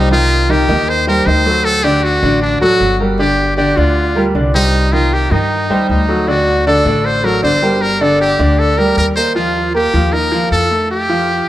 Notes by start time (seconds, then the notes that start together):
Already playing: C2 D#4
0.11 D#3 D#4 F4 D#5
0.49 D#3 D#4 G4 D#5
0.68 D#2 D#3 D#4 D#5
0.89 C5
1.07 G3 G4 A#4 C5
1.26 D2 D#3 D#4 C5 D#5
1.46 F#3 F#4 A4
1.65 A4
1.84 D3 D4 G4 D5
2.03 F#4
2.23 A1 D3 D4 D5
2.42 D4
2.61 A1 F#3 F#4 A4
2.80 G1
3.00 G3 G4 A#4
3.19 D3 D4 G4 D5
3.57 D3 D4 G4 D5
3.76 D2 D3 D4 F4 D5
4.15 G3 G4 A#4
4.35 C2 D3 D4 D5
4.54 G3 D#4 G4 C5
4.93 D#3 D#4 F4 D#5
5.13 G4
5.31 G2 D#3 D#4 D#5
5.70 D#2 G3 G4 C5
5.89 D2 D#4
6.09 F#3 F#4 A4
6.28 D3 D4 F#4 D5
6.67 D3 D4 A4 D5
6.85 A1 D3 D4 D5
7.05 C5
7.24 F#3 F#4 A4 A#4
7.43 G1 D3 D4 C5 D5
7.62 G3 G4 A#4
7.82 A#4
8.01 D3 D4 A4 D5
8.21 G4
8.39 D2 D3 D4 D5
8.59 A4
8.78 G3 G4 A#4
8.97 D#2 A#4
9.16 A#3 A#4 C5 D#5
9.35 F3 F4
9.74 A#3 G4 A#4
9.94 D#2 F3 F4
10.13 D#4 A#4 D#5
10.32 F3 F4
10.51 F2 A4
10.71 A3 A4
10.91 G4
11.09 F3 F4